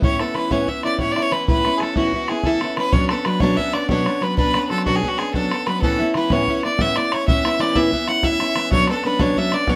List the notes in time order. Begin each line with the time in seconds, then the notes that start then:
0.02 A2 E3 B3 C#4 E4 C#5, bodhran
0.19 B3 C#4 E4 A4, bodhran
0.34 E3 B3 C#4 E4 B4, bodhran
0.51 A2 E3 B3 C#4 E4 C#5, bodhran
0.67 E3 B3 C#4 E5, bodhran
0.83 B3 C#4 E4 D5, bodhran
0.99 A2 E3 B3 C#4 E4 C#5, bodhran
1.11 D5
1.16 B3 C#4 E4, bodhran
1.22 C#5
1.32 E3 B3 C#4 E4 B4, bodhran
1.48 A2 E3 B3 C#4 E4 B4, bodhran
1.65 B3 C#4 E4, bodhran
1.78 E3 G#4, bodhran
1.82 B3 C#4 E4 A4
1.96 A2 E3 B3 C#4 E4 F#4, bodhran
2.13 E3 B3 C#4 E4, bodhran
2.28 B3 C#4 E4 G#4, bodhran
2.43 A2 E3 B3 C#4 E4 A4, bodhran
2.61 B3 C#4 E4, bodhran
2.77 E3 B3 C#4 E4 B4, bodhran
2.93 B2 F#3 B3 C#4 D4 C#5, bodhran
3.09 B3 C#4 D4 A4, bodhran
3.25 F#3 B3 C#4 D4 B4, bodhran
3.40 B2 F#3 B3 C#4 D4 C#5, bodhran
3.57 F#3 B3 C#4 D4 E5, bodhran
3.73 B3 C#4 D4 D5, bodhran
3.89 B2 F#3 B3 C#4 D4 C#5, bodhran
4.06 B3 C#4 D4, bodhran
4.21 F#3 B3 C#4 D4 B4, bodhran
4.37 B2 F#3 B3 C#4 D4 B4, bodhran
4.54 B3 C#4 D4, bodhran
4.70 F#3 B3 C#4 D4 A4, bodhran
4.78 bodhran
4.86 B2 F#3 B3 C#4 D4 F#4, bodhran
4.96 G#4
5.02 F#3 B3 C#4 D4, bodhran
5.08 F#4
5.18 B3 C#4 D4 G#4, bodhran
5.33 B2 F#3 B3 C#4 D4 A4, bodhran
5.51 B3 C#4 D4, bodhran
5.66 F#3 B3 C#4 D4 B4, bodhran
5.82 A2 E3 B3 C#4 E4 A4, bodhran
5.99 B3 C#4 E4
6.14 E3 B3 C#4 E4 B4, bodhran
6.30 A2 E3 B3 C#4 E4 C#5, bodhran
6.47 E3 B3 C#4 E4, bodhran
6.63 B3 C#4 E4 D5, bodhran
6.79 A2 E3 B3 C#4 E4 E5, bodhran
6.96 B3 C#4 E4 D5, bodhran
7.12 E3 B3 C#4 E4 C#5, bodhran
7.28 A2 E3 B3 C#4 E4 E5, bodhran
7.45 B3 C#4 E4, bodhran
7.60 E3 B3 C#4 E4 D5, bodhran
7.75 A2 E3 B3 C#4 E4 E5, bodhran
7.92 E3 B3 C#4 E4, bodhran
8.08 B3 C#4 E4 F#5, bodhran
8.23 A2 E3 B3 C#4 E4 E5, bodhran
8.40 B3 C#4 E4, bodhran
8.56 E3 B3 C#4 E4, bodhran
8.71 B2 F#3 B3 C#4 D4 C#5, bodhran
8.87 B3 C#4 D4 A4, bodhran
9.04 F#3 B3 C#4 D4 B4, bodhran
9.19 B2 F#3 B3 C#4 D4 C#5, bodhran
9.36 F#3 B3 C#4 D4 E5, bodhran
9.52 B3 C#4 D4 D5, bodhran
9.68 B2 F#3 B3 C#4 D4 C#5, bodhran